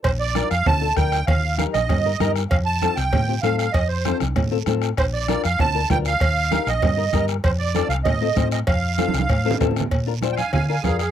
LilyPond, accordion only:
\new Staff \with { instrumentName = "Accordion" } { \time 4/4 \key bes \major \tempo 4 = 195 c''8 d''4 f''8 a''4 g''4 | f''4 f''8 ees''2 r8 | f''8 a''4 g''4. f''8 f''8 | ees''8 c''4 r2 r8 |
c''8 d''4 f''8 a''4 g''8 f''8~ | f''4. ees''2 r8 | c''8 d''4 f''8 ees''4. ees''8 | f''2. r4 |
r4. <f'' g'' aes''>8 <f'' aes''>8 <f'' aes''>8 <aes' f''>8 <aes' f''>8 | }